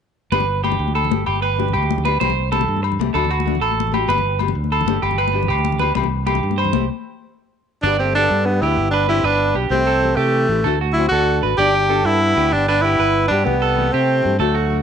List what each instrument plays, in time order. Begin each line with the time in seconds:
0.32 fingered electric bass G1, steel-string acoustic guitar B3 D4 G4, clean electric guitar B4, muted conga, low agogo
0.40 high conga, low conga
0.64 steel-string acoustic guitar B3 D4, clean electric guitar G4, muted steel-string acoustic guitar stroke, high conga, low agogo
0.72 muted conga, low conga
0.79 fingered electric bass D2
0.88 high conga
0.95 clean electric guitar A4, low agogo
1.04 low conga
1.09 fingered electric bass G1, steel-string acoustic guitar B3 G4, muted conga, high conga
1.26 fingered electric bass G1, clean electric guitar G4, low agogo
1.36 high conga
1.42 clean electric guitar B4, low agogo
1.56 steel-string acoustic guitar D4 G4, muted steel-string acoustic guitar stroke, high conga
1.68 low conga
1.73 fingered electric bass D2, clean electric guitar G4, low conga, low agogo
1.83 high conga
1.91 muted conga
1.98 low conga
2.04 steel-string acoustic guitar B3 D4 G4, clean electric guitar B4, high conga, low agogo
2.20 fingered electric bass C2, steel-string acoustic guitar E3 A3 C4 G4, clean electric guitar C5, muted conga, low agogo
2.30 high conga, low conga
2.51 steel-string acoustic guitar E3 A3 C4 G4, clean electric guitar A4, high conga, low agogo
2.61 muted conga, low conga
2.68 fingered electric bass G2
2.77 high conga
2.83 muted clean electric guitar stroke, low agogo
2.92 low conga
2.99 fingered electric bass C2, steel-string acoustic guitar E3 A3 G4, muted steel-string acoustic guitar stroke, muted conga, high conga
3.14 fingered electric bass D2, steel-string acoustic guitar A3 D4 F#4, clean electric guitar A4, low agogo
3.25 high conga, low conga
3.30 clean electric guitar F#4, low agogo
3.40 muted conga
3.45 steel-string acoustic guitar A3 D4 F#4, high conga
3.55 low conga
3.61 fingered electric bass A1, clean electric guitar A4, low conga, low agogo
3.71 high conga
3.80 muted conga
3.87 low conga
3.92 steel-string acoustic guitar A3 D4 F#4, clean electric guitar G4, high conga, low agogo
4.08 fingered electric bass G1, steel-string acoustic guitar B3 G4, clean electric guitar B4, muted steel-string acoustic guitar stroke, muted conga, low agogo
4.18 high conga, low conga
4.39 steel-string acoustic guitar B3 G4, muted steel-string acoustic guitar stroke, high conga, low agogo
4.48 muted conga, low conga
4.55 fingered electric bass D2
4.64 high conga
4.72 clean electric guitar A4, low agogo
4.81 low conga
4.86 fingered electric bass G1, steel-string acoustic guitar B3 D4, muted conga, high conga
4.90 steel-string acoustic guitar G4
5.02 fingered electric bass G1, clean electric guitar G4, low agogo
5.11 high conga, low conga
5.18 clean electric guitar B4, low agogo
5.27 muted conga
5.32 steel-string acoustic guitar B3 D4 G4
5.43 low conga
5.48 fingered electric bass D2, clean electric guitar G4, low conga, low agogo
5.58 high conga
5.65 muted conga
5.72 low conga
5.79 steel-string acoustic guitar B3 D4 G4, clean electric guitar B4, high conga, low agogo
5.95 fingered electric bass C2, steel-string acoustic guitar E3 A3 C4 G4, muted clean electric guitar stroke, muted conga, low agogo
6.04 high conga, low conga
6.26 steel-string acoustic guitar E3 A3 C4 G4, clean electric guitar G4, high conga, low conga, low agogo
6.35 muted conga, low conga
6.43 fingered electric bass G2
6.51 high conga, low conga
6.58 clean electric guitar C5, low agogo
6.64 low conga
6.73 fingered electric bass C2, steel-string acoustic guitar E3 A3 C4 G4, muted conga, high conga
7.83 fingered electric bass G1, steel-string acoustic guitar B3 D4 G4, trombone B3, tenor saxophone D4, clean electric guitar D5
7.99 trombone A3, tenor saxophone C4, clean electric guitar G4
8.15 steel-string acoustic guitar B3 D4 G4, tenor saxophone D4, clean electric guitar A4
8.20 trombone B3
8.31 fingered electric bass G2
8.45 tenor saxophone B3
8.50 trombone G3
8.62 fingered electric bass D2, steel-string acoustic guitar B3 D4 G4, tenor saxophone E4, clean electric guitar G4
8.67 trombone B3
8.77 fingered electric bass G1
8.91 tenor saxophone D4, clean electric guitar B4
8.96 trombone B3
9.08 steel-string acoustic guitar B3 D4 G4, trombone C4, tenor saxophone E4, clean electric guitar G4
9.23 fingered electric bass G1, trombone B3, tenor saxophone D4, clean electric guitar B4
9.54 fingered electric bass B1, steel-string acoustic guitar B3 D4 G4, clean electric guitar G4
9.70 fingered electric bass C2, steel-string acoustic guitar E3 A3 C4 G4, trombone A3, tenor saxophone C4
9.87 clean electric guitar A4
10.01 steel-string acoustic guitar E3 A3 C4 G4
10.16 fingered electric bass C3, trombone E3, tenor saxophone A3, clean electric guitar G4
10.48 fingered electric bass A1, steel-string acoustic guitar E3 C4 G4
10.64 fingered electric bass D2, steel-string acoustic guitar A3 D4 F#4, clean electric guitar A4
10.81 clean electric guitar F#4
10.93 steel-string acoustic guitar A3 D4, tenor saxophone E4
10.97 trombone C4, steel-string acoustic guitar F#4
11.09 fingered electric bass D2, trombone D4, tenor saxophone F#4, clean electric guitar A4
11.41 fingered electric bass G#1, steel-string acoustic guitar A3 D4 F#4, clean electric guitar B4
11.58 fingered electric bass G1, steel-string acoustic guitar B3 D4 G4, trombone D4, tenor saxophone G4, clean electric guitar D5
11.75 clean electric guitar G4
11.88 steel-string acoustic guitar B3 D4 G4, clean electric guitar A4
12.04 fingered electric bass G2, trombone B3, tenor saxophone E4
12.35 fingered electric bass D2, steel-string acoustic guitar B3 D4 G4, clean electric guitar G4
12.53 fingered electric bass G1, trombone B3, tenor saxophone D4
12.68 trombone B3, tenor saxophone D4, clean electric guitar B4
12.82 steel-string acoustic guitar B3 D4, trombone B3, tenor saxophone E4, clean electric guitar G4
12.99 fingered electric bass G1, clean electric guitar B4
13.28 fingered electric bass G2, trombone B3, steel-string acoustic guitar B3 D4, tenor saxophone D4, clean electric guitar G4
13.33 steel-string acoustic guitar G4
13.44 fingered electric bass C2, steel-string acoustic guitar E3 A3 C4 G4, trombone G3, tenor saxophone B3
13.62 clean electric guitar A4
13.75 steel-string acoustic guitar E3 A3 C4
13.79 steel-string acoustic guitar G4
13.91 fingered electric bass C3, trombone A3, tenor saxophone C4, clean electric guitar G4
14.22 fingered electric bass G2, steel-string acoustic guitar E3 G4, muted steel-string acoustic guitar stroke
14.39 fingered electric bass D2, trombone F#3, steel-string acoustic guitar A3 D4 F#4, tenor saxophone A3, clean electric guitar A4
14.55 clean electric guitar F#4
14.70 steel-string acoustic guitar A3 D4 F#4